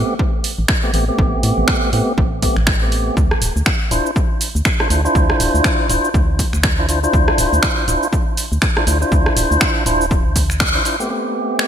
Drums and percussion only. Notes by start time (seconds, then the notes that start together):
0.19 kick
0.44 open hi-hat
0.68 finger snap, kick
0.94 open hi-hat
1.19 kick
1.43 open hi-hat
1.68 finger snap, kick
1.93 open hi-hat
2.18 kick
2.42 kick, open hi-hat
2.56 finger snap
2.67 finger snap, kick
2.92 open hi-hat
3.17 kick, shaker
3.31 cross-stick
3.42 open hi-hat, shaker
3.57 shaker
3.66 finger snap, kick, shaker
3.91 open hi-hat, shaker
4.06 shaker
4.16 kick, shaker
4.41 open hi-hat, shaker
4.56 shaker
4.65 finger snap, kick, shaker
4.80 cross-stick
4.90 open hi-hat, shaker
5.05 shaker
5.15 kick, shaker
5.30 cross-stick
5.40 open hi-hat, shaker
5.55 shaker
5.64 finger snap, kick, shaker
5.89 open hi-hat, shaker
6.05 shaker
6.14 kick, shaker
6.39 kick, open hi-hat, shaker
6.53 finger snap, shaker
6.63 finger snap, kick, shaker
6.89 open hi-hat, shaker
7.04 shaker
7.13 kick, shaker
7.28 cross-stick
7.38 open hi-hat, shaker
7.53 shaker
7.63 finger snap, kick, shaker
7.88 open hi-hat, shaker
8.03 shaker
8.13 kick, shaker
8.37 open hi-hat, shaker
8.52 shaker
8.62 finger snap, kick, shaker
8.77 cross-stick
8.87 open hi-hat, shaker
9.02 shaker
9.12 kick, shaker
9.26 cross-stick
9.37 open hi-hat, shaker
9.52 shaker
9.61 finger snap, kick, shaker
9.86 open hi-hat, shaker
10.01 shaker
10.11 kick, shaker
10.36 kick, open hi-hat, shaker
10.50 finger snap, shaker
10.60 finger snap, kick, shaker
10.85 open hi-hat, shaker
11.00 shaker
11.59 finger snap